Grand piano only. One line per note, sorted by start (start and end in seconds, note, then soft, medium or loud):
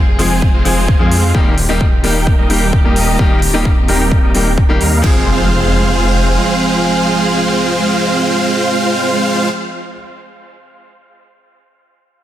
0.19 0.31 F3 medium
0.19 0.31 G#3 medium
0.19 0.31 C4 medium
0.19 0.31 G#4 medium
0.65 0.77 F3 medium
0.65 0.77 G#3 medium
0.65 0.77 C4 medium
0.65 0.77 G#4 medium
0.99 1.31 F3 medium
0.99 1.32 G#3 medium
0.99 1.32 C4 medium
0.99 1.32 G#4 medium
1.34 1.53 D#3 medium
1.34 1.53 G3 medium
1.34 1.53 A#3 medium
1.34 1.54 G4 medium
1.69 1.81 D#3 medium
1.69 1.81 G3 medium
1.69 1.81 A#3 medium
1.69 1.81 G4 loud
2.03 2.15 D#3 medium
2.03 2.15 G3 medium
2.03 2.16 A#3 medium
2.03 2.16 G4 medium
2.49 2.61 D#3 medium
2.49 2.62 G3 medium
2.49 2.62 A#3 medium
2.49 2.62 G4 medium
2.84 3.16 D#3 medium
2.84 3.16 G3 medium
2.84 3.17 A#3 medium
2.84 3.17 G4 medium
3.19 3.38 D#3 medium
3.19 3.38 G3 medium
3.19 3.38 A#3 medium
3.19 3.38 G4 medium
3.53 3.65 D#3 medium
3.53 3.65 G3 medium
3.53 3.66 A#3 medium
3.53 3.66 G4 loud
3.88 4.00 D#3 medium
3.88 4.00 G3 medium
3.88 4.00 A#3 medium
3.88 4.00 G4 medium
4.34 4.46 D#3 medium
4.34 4.46 G3 medium
4.34 4.46 A#3 medium
4.34 4.47 G4 medium
4.69 4.81 D#3 medium
4.69 4.81 G3 medium
4.69 4.81 A#3 medium
4.69 4.81 G4 loud
5.02 9.91 F3 medium
5.02 9.92 G#3 medium
5.02 9.93 C4 medium
5.02 9.95 G#4 medium